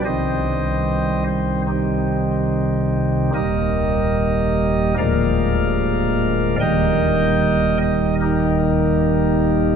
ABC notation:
X:1
M:4/4
L:1/8
Q:1/4=74
K:Eb
V:1 name="Pipe organ"
[Gce]3 c [CEG]4 | [GBe]4 [Bdf]4 | [Beg]3 e [EGB]4 |]
V:2 name="Pipe organ" clef=bass
[C,,C,E,G,C]8 | [E,,,E,,G,B,]4 [D,,,D,,F,A,B,]4 | [E,,,E,,E,G,B,]8 |]